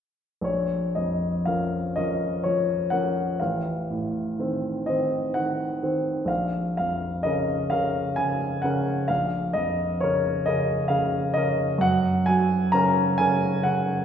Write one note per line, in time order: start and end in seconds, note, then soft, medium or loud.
0.41 3.35 A#1 soft
0.41 0.96 C#5 soft
0.95 1.77 F2 soft
0.95 1.46 D#5 soft
1.45 1.92 F3 soft
1.45 1.92 C#4 soft
1.45 1.93 A#4 soft
1.45 1.96 F5 medium
1.96 2.41 F3 soft
1.96 2.41 C#4 soft
1.96 2.41 A#4 soft
1.96 2.44 D#5 medium
2.44 2.91 F3 soft
2.44 2.92 C#5 soft
2.90 3.37 F3 soft
2.90 3.37 C#4 soft
2.90 3.37 A#4 soft
2.90 3.39 F#5 medium
3.40 6.26 A1 soft
3.40 4.86 F5 soft
3.90 4.68 A2 soft
4.39 4.83 D#3 soft
4.39 4.83 C4 soft
4.39 4.84 C5 soft
4.86 5.31 D#3 soft
4.86 5.32 C4 soft
4.86 5.32 C5 soft
4.86 5.34 D#5 medium
5.34 5.82 D#3 soft
5.34 6.29 F#5 medium
5.83 6.26 D#3 soft
5.83 6.26 C4 soft
5.83 6.26 C5 soft
6.25 9.03 A#1 soft
6.25 6.76 F5 soft
6.77 7.53 F2 soft
6.77 7.24 F5 medium
7.23 7.67 C#3 soft
7.23 7.67 C#4 soft
7.23 7.67 A#4 soft
7.23 7.70 D#5 medium
7.70 8.14 C#3 soft
7.70 8.14 C#4 soft
7.70 8.14 A#4 soft
7.70 8.17 F5 medium
8.16 8.63 C#3 soft
8.16 8.63 G#5 medium
8.62 9.06 C#3 soft
8.62 9.06 C#4 soft
8.62 9.06 A#4 soft
8.62 9.09 F#5 medium
9.08 11.78 A#1 soft
9.08 9.55 F5 medium
9.53 10.28 F2 soft
9.53 10.00 D#5 medium
10.01 10.43 C#3 soft
10.01 10.43 C#4 soft
10.01 10.43 A#4 soft
10.01 10.46 C#5 medium
10.46 10.87 C#3 soft
10.46 10.87 C#4 soft
10.46 10.87 A#4 soft
10.46 10.90 D#5 medium
10.88 11.35 C#3 soft
10.88 11.34 F5 medium
11.34 11.78 C#3 soft
11.34 11.78 C#4 soft
11.34 11.79 A#4 soft
11.34 11.81 D#5 medium
11.78 14.05 F#2 medium
11.78 12.28 F#5 medium
12.26 13.01 F#3 soft
12.26 12.73 G#5 medium
12.72 13.15 C#3 soft
12.72 13.15 C#4 soft
12.72 13.15 A#4 soft
12.72 13.18 A#5 medium
13.18 13.61 C#3 soft
13.18 13.61 C#4 soft
13.18 13.61 A#4 soft
13.18 13.64 G#5 medium
13.63 14.05 C#3 soft
13.63 14.05 F#5 medium